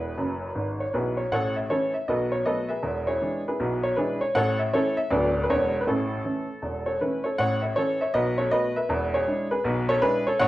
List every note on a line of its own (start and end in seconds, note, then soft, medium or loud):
0.00 0.13 E1 soft
0.00 0.13 E2 medium
0.00 0.78 E4 medium
0.00 0.78 G#4 soft
0.00 0.66 B4 medium
0.18 0.47 F#1 medium
0.18 0.47 F#2 medium
0.55 0.84 G#1 medium
0.55 0.84 G#2 soft
0.80 0.92 C#5 medium
0.94 1.23 B1 medium
0.94 1.22 B2 medium
0.94 1.18 E4 soft
0.94 1.18 G#4 soft
0.94 1.15 B4 medium
1.17 1.29 C#5 medium
1.32 1.64 A1 medium
1.32 1.65 A2 medium
1.32 1.56 A4 medium
1.32 1.56 C#5 medium
1.32 1.53 F#5 medium
1.56 1.68 E5 medium
1.70 1.91 E3 soft
1.70 1.92 A3 soft
1.70 1.92 C#4 soft
1.70 1.94 E4 medium
1.70 1.94 A4 medium
1.70 1.91 C#5 medium
1.94 2.06 E5 medium
2.08 2.40 B1 medium
2.08 2.41 B2 medium
2.08 2.32 A4 medium
2.08 2.32 B4 medium
2.08 2.29 D#5 medium
2.32 2.44 C#5 medium
2.46 2.67 F#3 soft
2.46 2.67 A3 soft
2.46 2.67 B3 soft
2.46 2.69 A4 medium
2.46 2.68 B4 medium
2.46 2.67 D#5 medium
2.69 3.06 G#4 medium
2.69 3.06 B4 soft
2.69 3.02 E5 medium
2.83 3.16 E1 medium
2.83 3.16 E2 medium
3.07 3.44 E4 medium
3.07 3.44 G#4 medium
3.07 3.40 C#5 medium
3.22 3.43 E3 soft
3.22 3.43 G#3 soft
3.22 3.43 D4 soft
3.48 3.83 E4 soft
3.48 3.83 G#4 medium
3.48 3.80 B4 medium
3.60 3.92 B1 medium
3.60 3.92 B2 medium
3.83 3.95 C#5 medium
3.96 4.18 E3 soft
3.96 4.19 G#3 soft
3.96 4.19 D4 medium
3.96 4.21 E4 medium
3.96 4.21 G#4 medium
3.96 4.18 B4 medium
4.21 4.33 C#5 medium
4.35 4.68 A1 medium
4.35 4.68 A2 medium
4.35 4.59 A4 medium
4.35 4.59 C#5 medium
4.35 4.56 F#5 loud
4.59 4.71 E5 medium
4.73 4.94 E3 soft
4.73 4.95 A3 medium
4.73 4.95 C#4 medium
4.73 4.97 E4 medium
4.73 4.97 A4 medium
4.73 4.94 C#5 medium
4.97 5.09 E5 medium
5.10 5.43 D1 medium
5.10 5.43 D2 medium
5.10 5.32 F#3 soft
5.10 5.32 B3 soft
5.10 5.33 D4 soft
5.10 5.41 A4 medium
5.10 5.41 B4 medium
5.10 5.37 D5 medium
5.43 5.50 B4 medium
5.50 5.82 E1 medium
5.50 5.82 E2 medium
5.50 5.70 G#3 soft
5.50 5.71 B3 soft
5.50 5.71 D4 soft
5.50 5.76 C#5 medium
5.81 5.87 B4 medium
5.87 6.19 A1 medium
5.87 6.19 A2 medium
5.87 6.24 C#4 soft
5.87 7.01 E4 medium
5.87 6.85 A4 medium
6.24 6.45 E3 soft
6.24 6.46 A3 soft
6.24 6.46 C#4 soft
6.62 6.95 E1 medium
6.62 6.95 E2 soft
6.86 6.99 A4 soft
6.86 6.98 C#5 medium
7.01 7.22 E3 soft
7.01 7.22 A3 soft
7.01 7.23 C#4 soft
7.01 7.24 E4 soft
7.01 7.22 B4 medium
7.24 7.38 A4 soft
7.24 7.36 C#5 medium
7.38 7.71 A1 medium
7.38 7.71 A2 medium
7.38 7.62 C#5 medium
7.38 7.59 F#5 loud
7.62 7.74 C#5 soft
7.62 7.74 E5 medium
7.76 7.97 E3 soft
7.76 7.98 C#4 soft
7.76 8.00 A4 medium
7.76 7.97 C#5 medium
8.01 8.14 C#5 medium
8.01 8.12 E5 medium
8.14 8.46 B1 medium
8.14 8.46 B2 medium
8.14 8.37 B4 medium
8.14 8.35 D#5 loud
8.38 8.51 A4 soft
8.38 8.49 C#5 medium
8.51 8.72 A3 medium
8.51 8.72 B3 medium
8.51 8.73 F#4 soft
8.51 8.75 B4 medium
8.51 8.72 D#5 loud
8.76 9.11 B4 medium
8.76 9.08 E5 medium
8.89 9.21 E1 medium
8.89 9.21 E2 medium
9.14 9.50 G#4 medium
9.14 9.46 C#5 medium
9.28 9.48 G#3 soft
9.28 9.48 D4 medium
9.28 9.49 E4 soft
9.51 9.87 G#4 medium
9.51 9.83 B4 medium
9.64 9.97 B1 medium
9.64 9.97 B2 medium
9.89 10.02 A4 medium
9.89 10.00 C#5 medium
10.02 10.23 G#3 medium
10.02 10.23 D4 medium
10.02 10.23 E4 medium
10.02 10.25 G#4 medium
10.02 10.23 B4 loud
10.27 10.40 A4 medium
10.27 10.38 C#5 medium
10.39 10.48 A1 medium
10.39 10.48 A2 medium
10.39 10.48 C#5 medium
10.39 10.48 F#5 loud